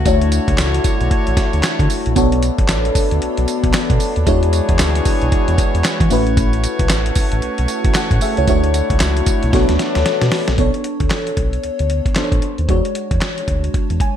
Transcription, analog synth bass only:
0, 0, Header, 1, 2, 480
1, 0, Start_track
1, 0, Tempo, 526316
1, 51, Time_signature, 4, 2, 24, 8
1, 12919, End_track
2, 0, Start_track
2, 0, Title_t, "Analog synth bass"
2, 0, Program_c, 0, 38
2, 52, Note_on_c, 0, 38, 120
2, 365, Note_off_c, 0, 38, 0
2, 439, Note_on_c, 0, 37, 93
2, 515, Note_off_c, 0, 37, 0
2, 536, Note_on_c, 0, 37, 97
2, 729, Note_off_c, 0, 37, 0
2, 921, Note_on_c, 0, 35, 104
2, 996, Note_off_c, 0, 35, 0
2, 1015, Note_on_c, 0, 33, 49
2, 1072, Note_off_c, 0, 33, 0
2, 1163, Note_on_c, 0, 33, 87
2, 1237, Note_off_c, 0, 33, 0
2, 1401, Note_on_c, 0, 38, 82
2, 1476, Note_off_c, 0, 38, 0
2, 1638, Note_on_c, 0, 50, 97
2, 1715, Note_off_c, 0, 50, 0
2, 1882, Note_on_c, 0, 34, 84
2, 1957, Note_off_c, 0, 34, 0
2, 1973, Note_on_c, 0, 35, 117
2, 2285, Note_off_c, 0, 35, 0
2, 2360, Note_on_c, 0, 33, 99
2, 2436, Note_off_c, 0, 33, 0
2, 2459, Note_on_c, 0, 33, 87
2, 2651, Note_off_c, 0, 33, 0
2, 2843, Note_on_c, 0, 38, 90
2, 2917, Note_off_c, 0, 38, 0
2, 2941, Note_on_c, 0, 35, 46
2, 2997, Note_off_c, 0, 35, 0
2, 3084, Note_on_c, 0, 35, 101
2, 3158, Note_off_c, 0, 35, 0
2, 3318, Note_on_c, 0, 35, 87
2, 3395, Note_off_c, 0, 35, 0
2, 3559, Note_on_c, 0, 47, 88
2, 3635, Note_off_c, 0, 47, 0
2, 3802, Note_on_c, 0, 39, 91
2, 3877, Note_off_c, 0, 39, 0
2, 3894, Note_on_c, 0, 40, 122
2, 4206, Note_off_c, 0, 40, 0
2, 4278, Note_on_c, 0, 40, 93
2, 4355, Note_off_c, 0, 40, 0
2, 4379, Note_on_c, 0, 38, 97
2, 4571, Note_off_c, 0, 38, 0
2, 4762, Note_on_c, 0, 35, 94
2, 4837, Note_off_c, 0, 35, 0
2, 4854, Note_on_c, 0, 40, 48
2, 4911, Note_off_c, 0, 40, 0
2, 5000, Note_on_c, 0, 40, 90
2, 5076, Note_off_c, 0, 40, 0
2, 5239, Note_on_c, 0, 40, 85
2, 5315, Note_off_c, 0, 40, 0
2, 5478, Note_on_c, 0, 52, 89
2, 5555, Note_off_c, 0, 52, 0
2, 5574, Note_on_c, 0, 33, 92
2, 6081, Note_off_c, 0, 33, 0
2, 6198, Note_on_c, 0, 35, 96
2, 6275, Note_off_c, 0, 35, 0
2, 6293, Note_on_c, 0, 33, 90
2, 6488, Note_off_c, 0, 33, 0
2, 6680, Note_on_c, 0, 33, 96
2, 6756, Note_off_c, 0, 33, 0
2, 6775, Note_on_c, 0, 35, 48
2, 6832, Note_off_c, 0, 35, 0
2, 6920, Note_on_c, 0, 35, 96
2, 6996, Note_off_c, 0, 35, 0
2, 7157, Note_on_c, 0, 33, 92
2, 7234, Note_off_c, 0, 33, 0
2, 7397, Note_on_c, 0, 45, 91
2, 7474, Note_off_c, 0, 45, 0
2, 7642, Note_on_c, 0, 37, 88
2, 7717, Note_off_c, 0, 37, 0
2, 7732, Note_on_c, 0, 38, 108
2, 8045, Note_off_c, 0, 38, 0
2, 8120, Note_on_c, 0, 37, 100
2, 8196, Note_off_c, 0, 37, 0
2, 8216, Note_on_c, 0, 37, 101
2, 8409, Note_off_c, 0, 37, 0
2, 8604, Note_on_c, 0, 35, 95
2, 8678, Note_off_c, 0, 35, 0
2, 8696, Note_on_c, 0, 35, 105
2, 8812, Note_off_c, 0, 35, 0
2, 8844, Note_on_c, 0, 38, 97
2, 8918, Note_off_c, 0, 38, 0
2, 9083, Note_on_c, 0, 38, 84
2, 9158, Note_off_c, 0, 38, 0
2, 9320, Note_on_c, 0, 47, 92
2, 9396, Note_off_c, 0, 47, 0
2, 9562, Note_on_c, 0, 34, 87
2, 9637, Note_off_c, 0, 34, 0
2, 9653, Note_on_c, 0, 35, 107
2, 9770, Note_off_c, 0, 35, 0
2, 10037, Note_on_c, 0, 38, 88
2, 10114, Note_off_c, 0, 38, 0
2, 10373, Note_on_c, 0, 35, 77
2, 10567, Note_off_c, 0, 35, 0
2, 10617, Note_on_c, 0, 38, 43
2, 10673, Note_off_c, 0, 38, 0
2, 10761, Note_on_c, 0, 38, 92
2, 10954, Note_off_c, 0, 38, 0
2, 11094, Note_on_c, 0, 33, 49
2, 11151, Note_off_c, 0, 33, 0
2, 11238, Note_on_c, 0, 33, 89
2, 11315, Note_off_c, 0, 33, 0
2, 11480, Note_on_c, 0, 39, 86
2, 11556, Note_off_c, 0, 39, 0
2, 11572, Note_on_c, 0, 40, 106
2, 11689, Note_off_c, 0, 40, 0
2, 11960, Note_on_c, 0, 40, 91
2, 12036, Note_off_c, 0, 40, 0
2, 12294, Note_on_c, 0, 38, 83
2, 12488, Note_off_c, 0, 38, 0
2, 12680, Note_on_c, 0, 40, 89
2, 12756, Note_off_c, 0, 40, 0
2, 12919, End_track
0, 0, End_of_file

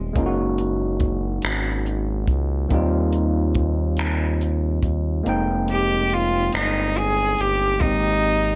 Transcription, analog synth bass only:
0, 0, Header, 1, 2, 480
1, 0, Start_track
1, 0, Key_signature, -4, "minor"
1, 0, Tempo, 851064
1, 86, Time_signature, 6, 3, 24, 8
1, 4824, End_track
2, 0, Start_track
2, 0, Title_t, "Analog synth bass"
2, 0, Program_c, 0, 38
2, 0, Note_on_c, 0, 27, 79
2, 64, Note_off_c, 0, 27, 0
2, 91, Note_on_c, 0, 30, 92
2, 786, Note_off_c, 0, 30, 0
2, 811, Note_on_c, 0, 32, 88
2, 1286, Note_on_c, 0, 37, 88
2, 1294, Note_off_c, 0, 32, 0
2, 1503, Note_off_c, 0, 37, 0
2, 1530, Note_on_c, 0, 39, 100
2, 2706, Note_off_c, 0, 39, 0
2, 2726, Note_on_c, 0, 39, 78
2, 2943, Note_off_c, 0, 39, 0
2, 2969, Note_on_c, 0, 29, 91
2, 3665, Note_off_c, 0, 29, 0
2, 3692, Note_on_c, 0, 31, 93
2, 4146, Note_off_c, 0, 31, 0
2, 4169, Note_on_c, 0, 31, 81
2, 4385, Note_off_c, 0, 31, 0
2, 4408, Note_on_c, 0, 32, 94
2, 4824, Note_off_c, 0, 32, 0
2, 4824, End_track
0, 0, End_of_file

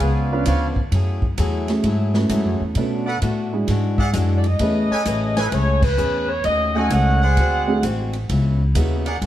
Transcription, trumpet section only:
0, 0, Header, 1, 2, 480
1, 0, Start_track
1, 0, Key_signature, 4, "minor"
1, 0, Tempo, 460476
1, 964, Time_signature, 4, 2, 24, 8
1, 9654, End_track
2, 0, Start_track
2, 0, Title_t, "Trumpet section"
2, 0, Program_c, 0, 61
2, 0, Note_on_c, 0, 71, 81
2, 0, Note_on_c, 0, 73, 75
2, 0, Note_on_c, 0, 74, 80
2, 0, Note_on_c, 0, 77, 82
2, 447, Note_off_c, 0, 71, 0
2, 448, Note_off_c, 0, 73, 0
2, 448, Note_off_c, 0, 74, 0
2, 448, Note_off_c, 0, 77, 0
2, 479, Note_on_c, 0, 71, 76
2, 479, Note_on_c, 0, 77, 73
2, 480, Note_on_c, 0, 74, 64
2, 482, Note_on_c, 0, 73, 72
2, 694, Note_off_c, 0, 71, 0
2, 694, Note_off_c, 0, 77, 0
2, 695, Note_off_c, 0, 74, 0
2, 696, Note_off_c, 0, 73, 0
2, 3191, Note_on_c, 0, 71, 72
2, 3191, Note_on_c, 0, 78, 85
2, 3193, Note_on_c, 0, 69, 77
2, 3195, Note_on_c, 0, 74, 68
2, 3304, Note_off_c, 0, 71, 0
2, 3304, Note_off_c, 0, 78, 0
2, 3306, Note_off_c, 0, 69, 0
2, 3306, Note_off_c, 0, 74, 0
2, 4151, Note_on_c, 0, 74, 68
2, 4152, Note_on_c, 0, 76, 74
2, 4153, Note_on_c, 0, 68, 84
2, 4153, Note_on_c, 0, 78, 88
2, 4264, Note_off_c, 0, 74, 0
2, 4265, Note_off_c, 0, 68, 0
2, 4265, Note_off_c, 0, 76, 0
2, 4265, Note_off_c, 0, 78, 0
2, 5113, Note_on_c, 0, 69, 81
2, 5113, Note_on_c, 0, 80, 89
2, 5114, Note_on_c, 0, 71, 85
2, 5115, Note_on_c, 0, 73, 73
2, 5226, Note_off_c, 0, 69, 0
2, 5226, Note_off_c, 0, 71, 0
2, 5226, Note_off_c, 0, 80, 0
2, 5227, Note_off_c, 0, 73, 0
2, 5590, Note_on_c, 0, 80, 84
2, 5591, Note_on_c, 0, 69, 73
2, 5591, Note_on_c, 0, 71, 69
2, 5594, Note_on_c, 0, 73, 63
2, 5703, Note_off_c, 0, 80, 0
2, 5704, Note_off_c, 0, 69, 0
2, 5704, Note_off_c, 0, 71, 0
2, 5706, Note_off_c, 0, 73, 0
2, 7025, Note_on_c, 0, 75, 70
2, 7026, Note_on_c, 0, 69, 78
2, 7028, Note_on_c, 0, 73, 66
2, 7029, Note_on_c, 0, 78, 83
2, 7481, Note_off_c, 0, 69, 0
2, 7481, Note_off_c, 0, 75, 0
2, 7482, Note_off_c, 0, 73, 0
2, 7483, Note_off_c, 0, 78, 0
2, 7515, Note_on_c, 0, 78, 92
2, 7518, Note_on_c, 0, 68, 91
2, 7518, Note_on_c, 0, 72, 83
2, 7520, Note_on_c, 0, 74, 76
2, 8129, Note_off_c, 0, 78, 0
2, 8130, Note_off_c, 0, 68, 0
2, 8130, Note_off_c, 0, 72, 0
2, 8131, Note_off_c, 0, 74, 0
2, 9438, Note_on_c, 0, 68, 68
2, 9439, Note_on_c, 0, 74, 68
2, 9439, Note_on_c, 0, 78, 83
2, 9443, Note_on_c, 0, 70, 62
2, 9550, Note_off_c, 0, 68, 0
2, 9551, Note_off_c, 0, 74, 0
2, 9551, Note_off_c, 0, 78, 0
2, 9553, Note_off_c, 0, 70, 0
2, 9654, End_track
0, 0, End_of_file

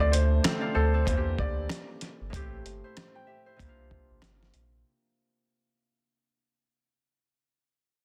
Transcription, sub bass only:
0, 0, Header, 1, 2, 480
1, 0, Start_track
1, 0, Tempo, 631579
1, 1770, Time_signature, 4, 2, 24, 8
1, 6113, End_track
2, 0, Start_track
2, 0, Title_t, "Sub bass"
2, 0, Program_c, 0, 38
2, 0, Note_on_c, 0, 38, 105
2, 302, Note_off_c, 0, 38, 0
2, 575, Note_on_c, 0, 38, 91
2, 793, Note_off_c, 0, 38, 0
2, 815, Note_on_c, 0, 40, 102
2, 1033, Note_off_c, 0, 40, 0
2, 1055, Note_on_c, 0, 38, 89
2, 1273, Note_off_c, 0, 38, 0
2, 1680, Note_on_c, 0, 31, 92
2, 1765, Note_off_c, 0, 31, 0
2, 1774, Note_on_c, 0, 33, 111
2, 1993, Note_off_c, 0, 33, 0
2, 2014, Note_on_c, 0, 31, 82
2, 2146, Note_off_c, 0, 31, 0
2, 2734, Note_on_c, 0, 36, 102
2, 3087, Note_off_c, 0, 36, 0
2, 3121, Note_on_c, 0, 33, 88
2, 3205, Note_off_c, 0, 33, 0
2, 3216, Note_on_c, 0, 31, 92
2, 3433, Note_off_c, 0, 31, 0
2, 3457, Note_on_c, 0, 34, 94
2, 3674, Note_off_c, 0, 34, 0
2, 6113, End_track
0, 0, End_of_file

